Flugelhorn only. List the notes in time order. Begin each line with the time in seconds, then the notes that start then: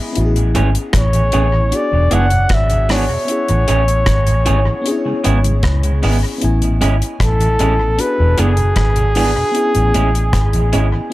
0.98 C#5
1.76 D5
2.13 F#5
2.54 E5
2.92 C#5
7.23 A4
8.01 B4
8.40 G#4